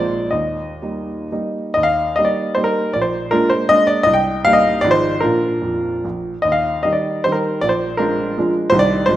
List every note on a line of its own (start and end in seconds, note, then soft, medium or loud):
0.00 0.30 A#1 medium
0.00 0.27 G#3 medium
0.00 0.27 A#3 medium
0.00 0.28 F4 medium
0.00 0.30 D5 loud
0.31 0.80 D#2 medium
0.31 1.54 D#5 medium
0.82 1.27 G3 soft
0.82 1.27 A#3 soft
0.82 1.28 D#4 soft
1.32 1.72 G3 soft
1.32 1.72 A#3 soft
1.32 1.72 D#4 medium
1.74 2.16 D#2 medium
1.74 1.85 D#5 loud
1.83 2.15 F5 loud
2.16 2.54 G3 medium
2.16 2.53 A#3 medium
2.16 2.54 D#4 medium
2.16 2.26 D#5 loud
2.25 2.55 D5 medium
2.55 2.91 G3 medium
2.55 2.91 A#3 medium
2.55 2.91 D#4 medium
2.55 2.65 C5 loud
2.64 2.93 A#4 medium
2.93 3.32 A#1 medium
2.93 3.03 D5 loud
3.02 3.32 C5 loud
3.31 3.67 G#3 medium
3.31 3.67 A#3 medium
3.31 3.50 D4 medium
3.31 3.50 F4 medium
3.31 3.51 A#4 loud
3.50 3.69 C5 loud
3.69 4.03 G#3 medium
3.69 4.03 A#3 medium
3.69 4.03 D4 medium
3.69 3.88 D#5 loud
3.87 4.05 D5 loud
4.03 4.43 C2 medium
4.03 4.14 D#5 loud
4.13 4.43 G5 loud
4.45 4.80 G3 medium
4.45 4.81 A#3 medium
4.45 4.81 D#4 medium
4.45 4.54 F5 loud
4.53 4.82 D#5 loud
4.81 5.21 G#1 medium
4.81 5.18 F3 medium
4.81 5.18 G#3 medium
4.81 5.19 D#4 medium
4.81 4.92 D5 loud
4.91 5.21 C5 loud
5.20 5.51 A#2 medium
5.20 5.55 F3 soft
5.20 6.00 D4 medium
5.20 6.00 F4 medium
5.20 6.04 A#4 medium
5.62 5.91 F2 medium
6.05 6.33 A#1 medium
6.42 6.84 D#2 medium
6.42 6.53 D#5 loud
6.52 6.84 F5 loud
6.83 7.21 D#3 medium
6.83 7.21 G3 medium
6.83 7.21 D#4 medium
6.83 6.94 D#5 medium
6.93 7.24 D5 medium
7.24 7.59 D#3 soft
7.24 7.59 G3 medium
7.24 7.59 D#4 medium
7.24 7.34 C5 loud
7.32 7.61 A#4 medium
7.61 7.99 A#1 medium
7.61 7.71 D5 loud
7.69 7.98 C5 loud
7.97 8.33 F3 medium
7.97 8.33 G#3 medium
7.97 8.37 D4 medium
7.97 8.50 F4 medium
7.97 8.53 A#4 medium
8.38 8.69 F3 medium
8.38 8.69 G#3 medium
8.38 8.69 D4 medium
8.70 9.07 C2 medium
8.70 9.04 D#3 medium
8.70 9.04 G3 medium
8.70 9.05 D#4 medium
8.70 8.79 C5 loud
8.79 9.07 D5 loud
9.06 9.16 G#1 medium
9.06 9.16 F3 medium
9.06 9.16 G#3 soft
9.06 9.16 D#4 medium
9.06 9.16 C5 loud